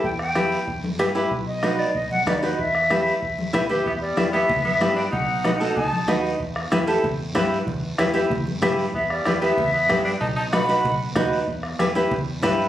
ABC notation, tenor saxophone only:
X:1
M:4/4
L:1/8
Q:1/4=189
K:Em
V:1 name="Tenor saxophone"
z8 | z8 | z8 | B, G,2 B,2 B,2 D |
^D3 D D3 z | z8 | z8 | B, G,2 B,2 B,2 D |
^D D F3 z3 | z8 |]